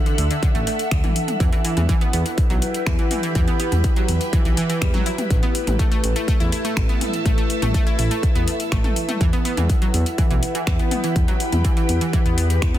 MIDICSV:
0, 0, Header, 1, 6, 480
1, 0, Start_track
1, 0, Key_signature, 1, "minor"
1, 0, Tempo, 487805
1, 1380, Time_signature, 4, 2, 24, 8
1, 12579, End_track
2, 0, Start_track
2, 0, Title_t, "Analog synth pad"
2, 0, Program_c, 0, 89
2, 0, Note_on_c, 0, 62, 80
2, 0, Note_on_c, 0, 69, 71
2, 0, Note_on_c, 0, 76, 86
2, 1341, Note_off_c, 0, 62, 0
2, 1341, Note_off_c, 0, 69, 0
2, 1341, Note_off_c, 0, 76, 0
2, 1377, Note_on_c, 0, 78, 87
2, 1378, Note_on_c, 0, 64, 79
2, 1379, Note_on_c, 0, 71, 75
2, 5180, Note_off_c, 0, 78, 0
2, 5220, Note_on_c, 0, 57, 80
2, 9020, Note_off_c, 0, 71, 0
2, 9021, Note_off_c, 0, 57, 0
2, 9061, Note_on_c, 0, 71, 71
2, 9062, Note_on_c, 0, 78, 85
2, 12579, Note_off_c, 0, 64, 0
2, 12579, Note_off_c, 0, 71, 0
2, 12579, Note_off_c, 0, 78, 0
2, 12579, End_track
3, 0, Start_track
3, 0, Title_t, "Ambient pad"
3, 0, Program_c, 1, 92
3, 0, Note_on_c, 1, 62, 89
3, 0, Note_on_c, 1, 69, 81
3, 0, Note_on_c, 1, 76, 89
3, 0, Note_on_c, 1, 78, 77
3, 1380, Note_on_c, 1, 64, 86
3, 1381, Note_off_c, 1, 78, 0
3, 1456, Note_on_c, 1, 71, 79
3, 1687, Note_on_c, 1, 67, 75
3, 2094, Note_off_c, 1, 69, 0
3, 2538, Note_off_c, 1, 76, 0
3, 2819, Note_off_c, 1, 62, 0
3, 5221, Note_off_c, 1, 71, 0
3, 5221, Note_on_c, 1, 69, 88
3, 5381, Note_on_c, 1, 76, 87
3, 6587, Note_off_c, 1, 67, 0
3, 6710, Note_off_c, 1, 64, 0
3, 9061, Note_on_c, 1, 64, 82
3, 9526, Note_on_c, 1, 71, 78
3, 9657, Note_on_c, 1, 67, 82
3, 9771, Note_off_c, 1, 69, 0
3, 10598, Note_off_c, 1, 76, 0
3, 12579, Note_off_c, 1, 64, 0
3, 12579, Note_off_c, 1, 67, 0
3, 12579, Note_off_c, 1, 71, 0
3, 12579, End_track
4, 0, Start_track
4, 0, Title_t, "Synth pluck"
4, 0, Program_c, 2, 84
4, 61, Note_on_c, 2, 50, 80
4, 136, Note_off_c, 2, 50, 0
4, 180, Note_on_c, 2, 50, 80
4, 290, Note_off_c, 2, 50, 0
4, 301, Note_on_c, 2, 50, 80
4, 346, Note_off_c, 2, 50, 0
4, 420, Note_on_c, 2, 50, 101
4, 465, Note_off_c, 2, 50, 0
4, 541, Note_on_c, 2, 57, 79
4, 616, Note_off_c, 2, 57, 0
4, 660, Note_on_c, 2, 57, 76
4, 736, Note_off_c, 2, 57, 0
4, 1021, Note_on_c, 2, 52, 77
4, 1095, Note_off_c, 2, 52, 0
4, 1380, Note_on_c, 2, 52, 81
4, 1456, Note_off_c, 2, 52, 0
4, 1501, Note_on_c, 2, 52, 77
4, 1575, Note_off_c, 2, 52, 0
4, 1620, Note_on_c, 2, 52, 77
4, 1728, Note_off_c, 2, 52, 0
4, 1740, Note_on_c, 2, 52, 76
4, 1785, Note_off_c, 2, 52, 0
4, 1860, Note_on_c, 2, 52, 102
4, 1906, Note_off_c, 2, 52, 0
4, 1980, Note_on_c, 2, 59, 82
4, 2055, Note_off_c, 2, 59, 0
4, 2100, Note_on_c, 2, 59, 76
4, 2176, Note_off_c, 2, 59, 0
4, 2460, Note_on_c, 2, 54, 78
4, 2535, Note_off_c, 2, 54, 0
4, 2820, Note_on_c, 2, 52, 85
4, 2896, Note_off_c, 2, 52, 0
4, 2941, Note_on_c, 2, 52, 79
4, 3015, Note_off_c, 2, 52, 0
4, 3059, Note_on_c, 2, 52, 79
4, 3169, Note_off_c, 2, 52, 0
4, 3181, Note_on_c, 2, 52, 77
4, 3226, Note_off_c, 2, 52, 0
4, 3300, Note_on_c, 2, 52, 100
4, 3345, Note_off_c, 2, 52, 0
4, 3421, Note_on_c, 2, 59, 78
4, 3495, Note_off_c, 2, 59, 0
4, 3541, Note_on_c, 2, 59, 80
4, 3616, Note_off_c, 2, 59, 0
4, 3902, Note_on_c, 2, 54, 81
4, 3976, Note_off_c, 2, 54, 0
4, 4259, Note_on_c, 2, 52, 84
4, 4336, Note_off_c, 2, 52, 0
4, 4381, Note_on_c, 2, 52, 76
4, 4456, Note_off_c, 2, 52, 0
4, 4500, Note_on_c, 2, 52, 99
4, 4545, Note_off_c, 2, 52, 0
4, 4620, Note_on_c, 2, 52, 77
4, 4732, Note_off_c, 2, 52, 0
4, 4738, Note_on_c, 2, 55, 85
4, 4853, Note_off_c, 2, 55, 0
4, 4860, Note_on_c, 2, 54, 103
4, 4972, Note_off_c, 2, 54, 0
4, 4978, Note_on_c, 2, 64, 77
4, 5024, Note_off_c, 2, 64, 0
4, 5340, Note_on_c, 2, 59, 78
4, 5415, Note_off_c, 2, 59, 0
4, 5699, Note_on_c, 2, 57, 83
4, 5775, Note_off_c, 2, 57, 0
4, 5821, Note_on_c, 2, 57, 81
4, 5895, Note_off_c, 2, 57, 0
4, 6061, Note_on_c, 2, 57, 81
4, 6106, Note_off_c, 2, 57, 0
4, 6180, Note_on_c, 2, 57, 100
4, 6225, Note_off_c, 2, 57, 0
4, 6300, Note_on_c, 2, 64, 79
4, 6375, Note_off_c, 2, 64, 0
4, 6419, Note_on_c, 2, 64, 77
4, 6495, Note_off_c, 2, 64, 0
4, 6540, Note_on_c, 2, 57, 78
4, 6652, Note_off_c, 2, 57, 0
4, 6781, Note_on_c, 2, 59, 78
4, 6855, Note_off_c, 2, 59, 0
4, 7139, Note_on_c, 2, 57, 83
4, 7215, Note_off_c, 2, 57, 0
4, 7260, Note_on_c, 2, 57, 75
4, 7335, Note_off_c, 2, 57, 0
4, 7501, Note_on_c, 2, 57, 78
4, 7546, Note_off_c, 2, 57, 0
4, 7620, Note_on_c, 2, 57, 101
4, 7665, Note_off_c, 2, 57, 0
4, 7741, Note_on_c, 2, 64, 80
4, 7815, Note_off_c, 2, 64, 0
4, 7860, Note_on_c, 2, 64, 78
4, 7936, Note_off_c, 2, 64, 0
4, 7981, Note_on_c, 2, 57, 78
4, 8093, Note_off_c, 2, 57, 0
4, 8221, Note_on_c, 2, 59, 79
4, 8296, Note_off_c, 2, 59, 0
4, 8580, Note_on_c, 2, 57, 84
4, 8656, Note_off_c, 2, 57, 0
4, 8701, Note_on_c, 2, 57, 78
4, 8776, Note_off_c, 2, 57, 0
4, 8941, Note_on_c, 2, 57, 78
4, 8986, Note_off_c, 2, 57, 0
4, 9059, Note_on_c, 2, 52, 102
4, 9105, Note_off_c, 2, 52, 0
4, 9180, Note_on_c, 2, 59, 77
4, 9255, Note_off_c, 2, 59, 0
4, 9300, Note_on_c, 2, 59, 80
4, 9376, Note_off_c, 2, 59, 0
4, 9421, Note_on_c, 2, 52, 77
4, 9533, Note_off_c, 2, 52, 0
4, 9662, Note_on_c, 2, 54, 77
4, 9736, Note_off_c, 2, 54, 0
4, 10020, Note_on_c, 2, 52, 82
4, 10096, Note_off_c, 2, 52, 0
4, 10141, Note_on_c, 2, 52, 80
4, 10216, Note_off_c, 2, 52, 0
4, 10381, Note_on_c, 2, 52, 77
4, 10426, Note_off_c, 2, 52, 0
4, 10500, Note_on_c, 2, 52, 105
4, 10545, Note_off_c, 2, 52, 0
4, 10622, Note_on_c, 2, 59, 79
4, 10696, Note_off_c, 2, 59, 0
4, 10741, Note_on_c, 2, 59, 80
4, 10816, Note_off_c, 2, 59, 0
4, 10861, Note_on_c, 2, 52, 79
4, 10973, Note_off_c, 2, 52, 0
4, 11101, Note_on_c, 2, 54, 78
4, 11176, Note_off_c, 2, 54, 0
4, 11460, Note_on_c, 2, 52, 83
4, 11536, Note_off_c, 2, 52, 0
4, 11580, Note_on_c, 2, 52, 79
4, 11655, Note_off_c, 2, 52, 0
4, 11820, Note_on_c, 2, 52, 80
4, 11865, Note_off_c, 2, 52, 0
4, 11939, Note_on_c, 2, 52, 102
4, 11985, Note_off_c, 2, 52, 0
4, 12060, Note_on_c, 2, 59, 78
4, 12135, Note_off_c, 2, 59, 0
4, 12180, Note_on_c, 2, 59, 80
4, 12294, Note_off_c, 2, 59, 0
4, 12540, Note_on_c, 2, 59, 77
4, 12579, Note_off_c, 2, 59, 0
4, 12579, End_track
5, 0, Start_track
5, 0, Title_t, "Detuned saw bass"
5, 0, Program_c, 3, 39
5, 179, Note_on_c, 3, 38, 100
5, 282, Note_off_c, 3, 38, 0
5, 539, Note_on_c, 3, 33, 101
5, 641, Note_off_c, 3, 33, 0
5, 900, Note_on_c, 3, 38, 93
5, 1002, Note_off_c, 3, 38, 0
5, 1380, Note_on_c, 3, 40, 99
5, 1482, Note_off_c, 3, 40, 0
5, 1740, Note_on_c, 3, 40, 83
5, 1841, Note_off_c, 3, 40, 0
5, 2100, Note_on_c, 3, 40, 97
5, 2202, Note_off_c, 3, 40, 0
5, 2461, Note_on_c, 3, 35, 99
5, 2561, Note_off_c, 3, 35, 0
5, 2820, Note_on_c, 3, 40, 94
5, 2922, Note_off_c, 3, 40, 0
5, 3301, Note_on_c, 3, 40, 98
5, 3402, Note_off_c, 3, 40, 0
5, 3661, Note_on_c, 3, 40, 84
5, 3762, Note_off_c, 3, 40, 0
5, 4020, Note_on_c, 3, 40, 96
5, 4122, Note_off_c, 3, 40, 0
5, 4380, Note_on_c, 3, 35, 100
5, 4481, Note_off_c, 3, 35, 0
5, 4740, Note_on_c, 3, 40, 94
5, 4842, Note_off_c, 3, 40, 0
5, 5220, Note_on_c, 3, 33, 103
5, 5322, Note_off_c, 3, 33, 0
5, 5581, Note_on_c, 3, 33, 83
5, 5682, Note_off_c, 3, 33, 0
5, 5939, Note_on_c, 3, 33, 95
5, 6042, Note_off_c, 3, 33, 0
5, 6300, Note_on_c, 3, 40, 100
5, 6401, Note_off_c, 3, 40, 0
5, 6660, Note_on_c, 3, 33, 95
5, 6762, Note_off_c, 3, 33, 0
5, 7139, Note_on_c, 3, 33, 98
5, 7242, Note_off_c, 3, 33, 0
5, 7501, Note_on_c, 3, 33, 84
5, 7601, Note_off_c, 3, 33, 0
5, 7860, Note_on_c, 3, 33, 97
5, 7962, Note_off_c, 3, 33, 0
5, 8221, Note_on_c, 3, 40, 100
5, 8321, Note_off_c, 3, 40, 0
5, 8580, Note_on_c, 3, 33, 90
5, 8682, Note_off_c, 3, 33, 0
5, 9060, Note_on_c, 3, 40, 98
5, 9162, Note_off_c, 3, 40, 0
5, 9421, Note_on_c, 3, 40, 83
5, 9521, Note_off_c, 3, 40, 0
5, 9779, Note_on_c, 3, 40, 96
5, 9882, Note_off_c, 3, 40, 0
5, 10140, Note_on_c, 3, 35, 101
5, 10241, Note_off_c, 3, 35, 0
5, 10500, Note_on_c, 3, 40, 92
5, 10602, Note_off_c, 3, 40, 0
5, 10980, Note_on_c, 3, 40, 101
5, 11082, Note_off_c, 3, 40, 0
5, 11341, Note_on_c, 3, 40, 85
5, 11441, Note_off_c, 3, 40, 0
5, 11699, Note_on_c, 3, 40, 97
5, 11802, Note_off_c, 3, 40, 0
5, 12060, Note_on_c, 3, 40, 101
5, 12390, Note_off_c, 3, 40, 0
5, 12420, Note_on_c, 3, 40, 99
5, 12579, Note_off_c, 3, 40, 0
5, 12579, End_track
6, 0, Start_track
6, 0, Title_t, "Drums"
6, 60, Note_on_c, 9, 42, 25
6, 159, Note_off_c, 9, 42, 0
6, 179, Note_on_c, 9, 46, 113
6, 278, Note_off_c, 9, 46, 0
6, 301, Note_on_c, 9, 42, 35
6, 399, Note_off_c, 9, 42, 0
6, 419, Note_on_c, 9, 36, 125
6, 419, Note_on_c, 9, 42, 45
6, 518, Note_off_c, 9, 36, 0
6, 518, Note_off_c, 9, 42, 0
6, 540, Note_on_c, 9, 42, 24
6, 639, Note_off_c, 9, 42, 0
6, 660, Note_on_c, 9, 46, 112
6, 758, Note_off_c, 9, 46, 0
6, 780, Note_on_c, 9, 42, 35
6, 879, Note_off_c, 9, 42, 0
6, 899, Note_on_c, 9, 26, 126
6, 899, Note_on_c, 9, 42, 47
6, 900, Note_on_c, 9, 36, 127
6, 998, Note_off_c, 9, 26, 0
6, 998, Note_off_c, 9, 36, 0
6, 998, Note_off_c, 9, 42, 0
6, 1021, Note_on_c, 9, 42, 23
6, 1021, Note_on_c, 9, 47, 88
6, 1119, Note_off_c, 9, 42, 0
6, 1119, Note_off_c, 9, 47, 0
6, 1140, Note_on_c, 9, 46, 112
6, 1238, Note_off_c, 9, 46, 0
6, 1261, Note_on_c, 9, 42, 35
6, 1261, Note_on_c, 9, 47, 78
6, 1359, Note_off_c, 9, 42, 0
6, 1359, Note_off_c, 9, 47, 0
6, 1380, Note_on_c, 9, 36, 127
6, 1380, Note_on_c, 9, 42, 43
6, 1478, Note_off_c, 9, 36, 0
6, 1478, Note_off_c, 9, 42, 0
6, 1501, Note_on_c, 9, 42, 22
6, 1599, Note_off_c, 9, 42, 0
6, 1619, Note_on_c, 9, 46, 116
6, 1718, Note_off_c, 9, 46, 0
6, 1740, Note_on_c, 9, 42, 33
6, 1740, Note_on_c, 9, 47, 91
6, 1839, Note_off_c, 9, 42, 0
6, 1839, Note_off_c, 9, 47, 0
6, 1859, Note_on_c, 9, 42, 45
6, 1860, Note_on_c, 9, 36, 124
6, 1958, Note_off_c, 9, 36, 0
6, 1958, Note_off_c, 9, 42, 0
6, 1981, Note_on_c, 9, 42, 23
6, 2079, Note_off_c, 9, 42, 0
6, 2099, Note_on_c, 9, 46, 119
6, 2197, Note_off_c, 9, 46, 0
6, 2220, Note_on_c, 9, 42, 34
6, 2319, Note_off_c, 9, 42, 0
6, 2339, Note_on_c, 9, 42, 44
6, 2340, Note_on_c, 9, 36, 124
6, 2438, Note_off_c, 9, 36, 0
6, 2438, Note_off_c, 9, 42, 0
6, 2460, Note_on_c, 9, 42, 23
6, 2559, Note_off_c, 9, 42, 0
6, 2579, Note_on_c, 9, 46, 120
6, 2677, Note_off_c, 9, 46, 0
6, 2700, Note_on_c, 9, 42, 35
6, 2799, Note_off_c, 9, 42, 0
6, 2819, Note_on_c, 9, 26, 125
6, 2819, Note_on_c, 9, 42, 45
6, 2820, Note_on_c, 9, 36, 127
6, 2918, Note_off_c, 9, 26, 0
6, 2918, Note_off_c, 9, 36, 0
6, 2918, Note_off_c, 9, 42, 0
6, 2940, Note_on_c, 9, 42, 22
6, 3038, Note_off_c, 9, 42, 0
6, 3059, Note_on_c, 9, 46, 113
6, 3059, Note_on_c, 9, 47, 78
6, 3157, Note_off_c, 9, 46, 0
6, 3157, Note_off_c, 9, 47, 0
6, 3180, Note_on_c, 9, 42, 34
6, 3278, Note_off_c, 9, 42, 0
6, 3299, Note_on_c, 9, 42, 42
6, 3300, Note_on_c, 9, 36, 126
6, 3397, Note_off_c, 9, 42, 0
6, 3399, Note_off_c, 9, 36, 0
6, 3420, Note_on_c, 9, 42, 22
6, 3518, Note_off_c, 9, 42, 0
6, 3539, Note_on_c, 9, 46, 113
6, 3637, Note_off_c, 9, 46, 0
6, 3660, Note_on_c, 9, 42, 32
6, 3660, Note_on_c, 9, 47, 94
6, 3759, Note_off_c, 9, 42, 0
6, 3759, Note_off_c, 9, 47, 0
6, 3779, Note_on_c, 9, 42, 44
6, 3780, Note_on_c, 9, 36, 124
6, 3877, Note_off_c, 9, 42, 0
6, 3879, Note_off_c, 9, 36, 0
6, 3900, Note_on_c, 9, 42, 22
6, 3998, Note_off_c, 9, 42, 0
6, 4019, Note_on_c, 9, 46, 112
6, 4118, Note_off_c, 9, 46, 0
6, 4140, Note_on_c, 9, 42, 33
6, 4239, Note_off_c, 9, 42, 0
6, 4260, Note_on_c, 9, 36, 127
6, 4260, Note_on_c, 9, 42, 43
6, 4359, Note_off_c, 9, 36, 0
6, 4359, Note_off_c, 9, 42, 0
6, 4381, Note_on_c, 9, 42, 22
6, 4479, Note_off_c, 9, 42, 0
6, 4499, Note_on_c, 9, 46, 115
6, 4598, Note_off_c, 9, 46, 0
6, 4621, Note_on_c, 9, 42, 34
6, 4719, Note_off_c, 9, 42, 0
6, 4740, Note_on_c, 9, 26, 122
6, 4740, Note_on_c, 9, 36, 127
6, 4740, Note_on_c, 9, 42, 44
6, 4839, Note_off_c, 9, 26, 0
6, 4839, Note_off_c, 9, 36, 0
6, 4839, Note_off_c, 9, 42, 0
6, 4861, Note_on_c, 9, 42, 21
6, 4861, Note_on_c, 9, 47, 92
6, 4960, Note_off_c, 9, 42, 0
6, 4960, Note_off_c, 9, 47, 0
6, 4980, Note_on_c, 9, 46, 113
6, 5078, Note_off_c, 9, 46, 0
6, 5101, Note_on_c, 9, 42, 32
6, 5101, Note_on_c, 9, 47, 82
6, 5199, Note_off_c, 9, 42, 0
6, 5199, Note_off_c, 9, 47, 0
6, 5220, Note_on_c, 9, 36, 122
6, 5220, Note_on_c, 9, 42, 42
6, 5318, Note_off_c, 9, 36, 0
6, 5318, Note_off_c, 9, 42, 0
6, 5341, Note_on_c, 9, 42, 21
6, 5440, Note_off_c, 9, 42, 0
6, 5460, Note_on_c, 9, 46, 109
6, 5558, Note_off_c, 9, 46, 0
6, 5582, Note_on_c, 9, 42, 32
6, 5582, Note_on_c, 9, 47, 94
6, 5680, Note_off_c, 9, 42, 0
6, 5680, Note_off_c, 9, 47, 0
6, 5700, Note_on_c, 9, 36, 116
6, 5701, Note_on_c, 9, 42, 44
6, 5798, Note_off_c, 9, 36, 0
6, 5799, Note_off_c, 9, 42, 0
6, 5822, Note_on_c, 9, 42, 23
6, 5920, Note_off_c, 9, 42, 0
6, 5940, Note_on_c, 9, 46, 114
6, 6038, Note_off_c, 9, 46, 0
6, 6060, Note_on_c, 9, 42, 33
6, 6159, Note_off_c, 9, 42, 0
6, 6180, Note_on_c, 9, 36, 122
6, 6180, Note_on_c, 9, 42, 44
6, 6278, Note_off_c, 9, 36, 0
6, 6278, Note_off_c, 9, 42, 0
6, 6301, Note_on_c, 9, 42, 23
6, 6400, Note_off_c, 9, 42, 0
6, 6420, Note_on_c, 9, 46, 110
6, 6518, Note_off_c, 9, 46, 0
6, 6541, Note_on_c, 9, 42, 34
6, 6639, Note_off_c, 9, 42, 0
6, 6660, Note_on_c, 9, 26, 117
6, 6660, Note_on_c, 9, 36, 123
6, 6660, Note_on_c, 9, 42, 44
6, 6758, Note_off_c, 9, 26, 0
6, 6758, Note_off_c, 9, 36, 0
6, 6758, Note_off_c, 9, 42, 0
6, 6781, Note_on_c, 9, 42, 21
6, 6879, Note_off_c, 9, 42, 0
6, 6900, Note_on_c, 9, 46, 107
6, 6900, Note_on_c, 9, 47, 84
6, 6999, Note_off_c, 9, 46, 0
6, 6999, Note_off_c, 9, 47, 0
6, 7021, Note_on_c, 9, 42, 32
6, 7119, Note_off_c, 9, 42, 0
6, 7140, Note_on_c, 9, 36, 118
6, 7140, Note_on_c, 9, 42, 44
6, 7238, Note_off_c, 9, 36, 0
6, 7238, Note_off_c, 9, 42, 0
6, 7260, Note_on_c, 9, 42, 23
6, 7359, Note_off_c, 9, 42, 0
6, 7379, Note_on_c, 9, 46, 107
6, 7478, Note_off_c, 9, 46, 0
6, 7501, Note_on_c, 9, 42, 33
6, 7501, Note_on_c, 9, 47, 97
6, 7599, Note_off_c, 9, 42, 0
6, 7599, Note_off_c, 9, 47, 0
6, 7620, Note_on_c, 9, 36, 118
6, 7620, Note_on_c, 9, 42, 46
6, 7718, Note_off_c, 9, 36, 0
6, 7718, Note_off_c, 9, 42, 0
6, 7741, Note_on_c, 9, 42, 23
6, 7839, Note_off_c, 9, 42, 0
6, 7860, Note_on_c, 9, 46, 107
6, 7958, Note_off_c, 9, 46, 0
6, 7981, Note_on_c, 9, 42, 35
6, 8080, Note_off_c, 9, 42, 0
6, 8100, Note_on_c, 9, 36, 118
6, 8100, Note_on_c, 9, 42, 45
6, 8198, Note_off_c, 9, 36, 0
6, 8199, Note_off_c, 9, 42, 0
6, 8221, Note_on_c, 9, 42, 24
6, 8320, Note_off_c, 9, 42, 0
6, 8340, Note_on_c, 9, 46, 108
6, 8438, Note_off_c, 9, 46, 0
6, 8461, Note_on_c, 9, 42, 36
6, 8559, Note_off_c, 9, 42, 0
6, 8580, Note_on_c, 9, 26, 115
6, 8580, Note_on_c, 9, 36, 121
6, 8580, Note_on_c, 9, 42, 46
6, 8678, Note_off_c, 9, 26, 0
6, 8678, Note_off_c, 9, 42, 0
6, 8679, Note_off_c, 9, 36, 0
6, 8701, Note_on_c, 9, 42, 22
6, 8701, Note_on_c, 9, 47, 98
6, 8799, Note_off_c, 9, 42, 0
6, 8799, Note_off_c, 9, 47, 0
6, 8820, Note_on_c, 9, 46, 107
6, 8918, Note_off_c, 9, 46, 0
6, 8941, Note_on_c, 9, 42, 35
6, 8941, Note_on_c, 9, 47, 82
6, 9039, Note_off_c, 9, 42, 0
6, 9039, Note_off_c, 9, 47, 0
6, 9060, Note_on_c, 9, 36, 116
6, 9060, Note_on_c, 9, 42, 47
6, 9158, Note_off_c, 9, 42, 0
6, 9159, Note_off_c, 9, 36, 0
6, 9181, Note_on_c, 9, 42, 24
6, 9280, Note_off_c, 9, 42, 0
6, 9300, Note_on_c, 9, 46, 104
6, 9399, Note_off_c, 9, 46, 0
6, 9421, Note_on_c, 9, 42, 34
6, 9421, Note_on_c, 9, 47, 96
6, 9519, Note_off_c, 9, 42, 0
6, 9519, Note_off_c, 9, 47, 0
6, 9540, Note_on_c, 9, 36, 116
6, 9540, Note_on_c, 9, 42, 47
6, 9638, Note_off_c, 9, 42, 0
6, 9639, Note_off_c, 9, 36, 0
6, 9661, Note_on_c, 9, 42, 24
6, 9760, Note_off_c, 9, 42, 0
6, 9780, Note_on_c, 9, 46, 108
6, 9878, Note_off_c, 9, 46, 0
6, 9901, Note_on_c, 9, 42, 37
6, 10000, Note_off_c, 9, 42, 0
6, 10020, Note_on_c, 9, 36, 113
6, 10020, Note_on_c, 9, 42, 47
6, 10118, Note_off_c, 9, 42, 0
6, 10119, Note_off_c, 9, 36, 0
6, 10141, Note_on_c, 9, 42, 25
6, 10239, Note_off_c, 9, 42, 0
6, 10260, Note_on_c, 9, 46, 107
6, 10358, Note_off_c, 9, 46, 0
6, 10381, Note_on_c, 9, 42, 37
6, 10479, Note_off_c, 9, 42, 0
6, 10500, Note_on_c, 9, 26, 118
6, 10500, Note_on_c, 9, 36, 118
6, 10500, Note_on_c, 9, 42, 48
6, 10598, Note_off_c, 9, 26, 0
6, 10598, Note_off_c, 9, 42, 0
6, 10599, Note_off_c, 9, 36, 0
6, 10621, Note_on_c, 9, 42, 23
6, 10719, Note_off_c, 9, 42, 0
6, 10739, Note_on_c, 9, 46, 102
6, 10739, Note_on_c, 9, 47, 84
6, 10837, Note_off_c, 9, 46, 0
6, 10837, Note_off_c, 9, 47, 0
6, 10860, Note_on_c, 9, 42, 36
6, 10959, Note_off_c, 9, 42, 0
6, 10980, Note_on_c, 9, 36, 117
6, 10980, Note_on_c, 9, 42, 47
6, 11078, Note_off_c, 9, 36, 0
6, 11078, Note_off_c, 9, 42, 0
6, 11100, Note_on_c, 9, 42, 23
6, 11199, Note_off_c, 9, 42, 0
6, 11219, Note_on_c, 9, 46, 103
6, 11317, Note_off_c, 9, 46, 0
6, 11340, Note_on_c, 9, 42, 36
6, 11340, Note_on_c, 9, 47, 92
6, 11439, Note_off_c, 9, 42, 0
6, 11439, Note_off_c, 9, 47, 0
6, 11459, Note_on_c, 9, 42, 50
6, 11460, Note_on_c, 9, 36, 114
6, 11557, Note_off_c, 9, 42, 0
6, 11558, Note_off_c, 9, 36, 0
6, 11580, Note_on_c, 9, 42, 25
6, 11678, Note_off_c, 9, 42, 0
6, 11699, Note_on_c, 9, 46, 106
6, 11797, Note_off_c, 9, 46, 0
6, 11820, Note_on_c, 9, 42, 37
6, 11919, Note_off_c, 9, 42, 0
6, 11939, Note_on_c, 9, 42, 46
6, 11940, Note_on_c, 9, 36, 114
6, 12038, Note_off_c, 9, 36, 0
6, 12038, Note_off_c, 9, 42, 0
6, 12060, Note_on_c, 9, 42, 24
6, 12159, Note_off_c, 9, 42, 0
6, 12179, Note_on_c, 9, 46, 105
6, 12278, Note_off_c, 9, 46, 0
6, 12301, Note_on_c, 9, 42, 36
6, 12399, Note_off_c, 9, 42, 0
6, 12419, Note_on_c, 9, 26, 123
6, 12419, Note_on_c, 9, 42, 49
6, 12420, Note_on_c, 9, 36, 124
6, 12518, Note_off_c, 9, 26, 0
6, 12518, Note_off_c, 9, 36, 0
6, 12518, Note_off_c, 9, 42, 0
6, 12540, Note_on_c, 9, 42, 24
6, 12540, Note_on_c, 9, 47, 91
6, 12579, Note_off_c, 9, 42, 0
6, 12579, Note_off_c, 9, 47, 0
6, 12579, End_track
0, 0, End_of_file